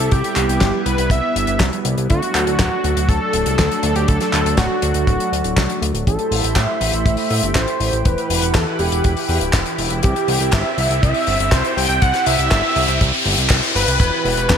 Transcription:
Already playing: analog synth pad G3 E4, analog synth lead A4
0.11 analog synth bass C2, analog synth pad B3, analog synth lead G4, kick, closed hi-hat
0.24 closed hi-hat
0.36 analog synth bass C2, clap, closed hi-hat
0.49 analog synth bass C2, closed hi-hat
0.61 analog synth bass G1, kick, snare, clap, closed hi-hat
0.86 analog synth bass C2, analog synth lead B4, closed hi-hat
0.98 analog synth bass C2, closed hi-hat
1.10 analog synth bass C2, analog synth lead E5, kick, closed hi-hat
1.36 analog synth bass G1, closed hi-hat
1.47 analog synth bass G1, closed hi-hat
1.60 analog synth bass C2, kick, snare, clap, closed hi-hat
1.73 closed hi-hat
1.85 analog synth bass C2, closed hi-hat
1.98 analog synth bass C2, closed hi-hat
2.10 analog synth bass D2, analog synth pad F#3 A3 D4, analog synth lead F#4, kick, closed hi-hat
2.22 closed hi-hat
2.35 analog synth bass D2, clap, closed hi-hat
2.47 analog synth bass D2, closed hi-hat
2.59 analog synth bass D1, kick, snare, clap, closed hi-hat
2.84 analog synth bass D2, closed hi-hat
2.97 analog synth bass D2, closed hi-hat
3.09 analog synth bass D2, analog synth lead A4, kick, closed hi-hat
3.33 analog synth bass D1, closed hi-hat
3.46 analog synth bass C2, closed hi-hat
3.59 analog synth bass D2, kick, snare, clap, closed hi-hat
3.72 closed hi-hat
3.83 analog synth bass D2, analog synth lead A4, closed hi-hat
3.96 analog synth bass D2, analog synth lead G4, closed hi-hat
4.08 analog synth bass D2, analog synth lead A4, kick, closed hi-hat
4.21 snare, closed hi-hat
4.33 analog synth bass D2, clap, closed hi-hat
4.45 analog synth bass D2, closed hi-hat
4.57 analog synth bass D1, analog synth lead F#4, kick, snare, clap, closed hi-hat
4.82 analog synth bass D2, closed hi-hat
4.94 analog synth bass D2, closed hi-hat
5.07 analog synth bass D1, kick, closed hi-hat
5.20 closed hi-hat
5.32 analog synth bass D2, closed hi-hat
5.44 analog synth bass D1, closed hi-hat
5.57 analog synth bass C2, kick, snare, clap, closed hi-hat
5.69 closed hi-hat
5.82 analog synth bass D2, closed hi-hat
5.94 analog synth bass D1, closed hi-hat
6.06 analog synth bass A1, analog synth pad A3 E4 G4 C5 B5, analog synth lead A4, kick, closed hi-hat, riser
6.19 closed hi-hat
6.31 analog synth bass A1, open hi-hat
6.44 analog synth bass A1, closed hi-hat
6.56 analog synth bass A2, analog synth lead E5, kick, snare, clap, closed hi-hat
6.81 analog synth bass A1, open hi-hat
6.93 analog synth bass A1, closed hi-hat
7.06 analog synth bass A1, analog synth lead E5, kick, closed hi-hat
7.17 open hi-hat
7.30 analog synth bass A2, open hi-hat
7.43 analog synth bass G1, closed hi-hat
7.55 analog synth bass A1, analog synth lead C5, kick, snare, clap, closed hi-hat
7.68 closed hi-hat
7.80 analog synth bass A1, open hi-hat
7.92 analog synth bass A1, closed hi-hat
8.05 analog synth bass E1, analog synth pad E3 B4 F#5, analog synth lead B4, kick, closed hi-hat
8.18 closed hi-hat
8.30 analog synth bass E1, open hi-hat
8.42 analog synth bass E1, closed hi-hat
8.54 analog synth bass E2, analog synth lead A4, kick, snare, clap, closed hi-hat
8.79 analog synth bass E1, analog synth lead G4, open hi-hat
8.92 analog synth bass E1, closed hi-hat
9.04 analog synth bass E1, kick, closed hi-hat
9.17 open hi-hat
9.29 analog synth bass E2, open hi-hat
9.41 analog synth bass D1, closed hi-hat
9.53 analog synth bass E1, kick, snare, clap, closed hi-hat
9.66 closed hi-hat
9.78 analog synth bass E1, open hi-hat
9.90 analog synth bass E1, closed hi-hat
10.03 analog synth bass C2, analog synth pad C4, analog synth lead G4, kick, closed hi-hat
10.16 closed hi-hat
10.28 analog synth bass C2, open hi-hat
10.40 analog synth bass C2, closed hi-hat
10.51 analog synth bass G1, analog synth lead E5, kick, snare, clap, closed hi-hat
10.78 analog synth bass C2, open hi-hat
10.90 analog synth bass C2, closed hi-hat
11.03 analog synth bass C2, analog synth lead E5, kick, closed hi-hat
11.14 open hi-hat
11.27 analog synth bass G1, open hi-hat
11.40 analog synth bass G1, closed hi-hat
11.52 analog synth bass C2, analog synth lead C5, kick, snare, clap, closed hi-hat
11.64 closed hi-hat
11.77 analog synth bass C2, analog synth lead G5, open hi-hat
11.89 analog synth bass C2, closed hi-hat
12.02 analog synth bass C2, analog synth lead F#5, kick, closed hi-hat
12.14 snare, closed hi-hat
12.26 analog synth bass C2, analog synth lead E5, open hi-hat
12.39 analog synth bass C2, closed hi-hat
12.51 analog synth bass G1, kick, snare, clap, closed hi-hat
12.76 analog synth bass C2, open hi-hat
12.88 analog synth bass C2, closed hi-hat
13.01 analog synth bass C2, kick, closed hi-hat
13.14 open hi-hat
13.25 analog synth bass G1, open hi-hat
13.38 analog synth bass C2, closed hi-hat
13.49 analog synth bass C2, kick, snare, clap, closed hi-hat
13.63 closed hi-hat
13.75 analog synth bass G1, analog synth lead B4, open hi-hat
13.88 analog synth bass C2, closed hi-hat
13.99 analog synth bass E1, analog synth pad E3 E4 F#4 G4 B4, kick, closed hi-hat, crash
14.25 analog synth bass E1, analog synth lead B4, open hi-hat
14.37 analog synth bass E1, closed hi-hat
14.49 analog synth bass E2, kick, snare, clap, closed hi-hat

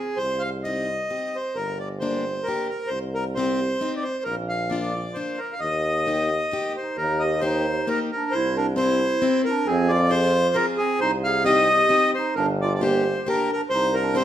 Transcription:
Already playing: accordion G#4
0.17 tuba C2, accordion C5
0.40 accordion F5
0.64 steel-string acoustic guitar C4 D#4 G4, accordion D#5
1.10 steel-string acoustic guitar C4 D#4 G4
1.36 accordion C5
1.55 tuba G1, accordion A#4
1.79 accordion D5
1.99 steel-string acoustic guitar A#3 D4 G4, accordion C5
2.43 steel-string acoustic guitar A#3, accordion A#4
2.48 steel-string acoustic guitar D4 G4
2.69 accordion A#4
2.87 tuba C2, accordion C5
3.15 accordion A#4
3.35 steel-string acoustic guitar C4 D#4, accordion C5
3.39 steel-string acoustic guitar G4
3.81 steel-string acoustic guitar C4 D#4 G4
3.96 accordion D5
4.03 accordion C5
4.24 tuba A#1, accordion A#4
4.49 accordion F5
4.70 steel-string acoustic guitar A#3 D4 F4, accordion D5
5.14 steel-string acoustic guitar A#3 D4 F4, accordion C5
5.38 accordion A#4
5.52 accordion F5
5.60 tuba D#2, accordion D#5
6.06 steel-string acoustic guitar A#3 D#4 G4
6.51 steel-string acoustic guitar A#3 D#4 G4
6.77 clarinet D#4, accordion C5
6.97 tuba D#2, clarinet D#4, accordion A#4
7.19 accordion D#5
7.24 clarinet G4
7.41 steel-string acoustic guitar A#3 D#4 G4, accordion C5
7.46 clarinet D#4
7.87 steel-string acoustic guitar A#3 D#4 G4, clarinet D#4, accordion A#4
8.12 clarinet D4, accordion A#4
8.31 tuba C2, clarinet E4, accordion C5
8.57 clarinet D4, accordion A#4
8.76 steel-string acoustic guitar C4 E4 G4, clarinet E4, accordion C5
9.22 steel-string acoustic guitar C4 E4 G4
9.45 clarinet D4, accordion A#4
9.66 tuba F2, clarinet C4, accordion G#4
9.88 clarinet F4, accordion D5
10.10 steel-string acoustic guitar C4 F4 G#4, clarinet F4, accordion C5
10.54 steel-string acoustic guitar C4 F4 G#4, clarinet F4, accordion A#4
10.77 clarinet C4, accordion G#4
11.00 tuba C2, clarinet D#4, accordion C5
11.24 clarinet G#4, accordion F5
11.44 steel-string acoustic guitar C4 D#4 G4, clarinet G4, accordion D#5
11.89 steel-string acoustic guitar C4 D#4 G4
12.15 clarinet D#4, accordion C5
12.35 tuba G1, clarinet D4, accordion A#4
12.62 clarinet F4, accordion D5
12.75 clarinet F4, accordion D5
12.81 steel-string acoustic guitar A#3 D4 G4, accordion C5
12.86 clarinet G4
13.27 steel-string acoustic guitar A#3 D4 G4, clarinet D4, accordion A#4
13.52 clarinet D4, accordion A#4
13.70 tuba C2, accordion C5
13.74 clarinet D#4
13.94 accordion A#4
14.00 clarinet D4
14.15 steel-string acoustic guitar C4 D#4 G4, accordion C5
14.19 clarinet D#4

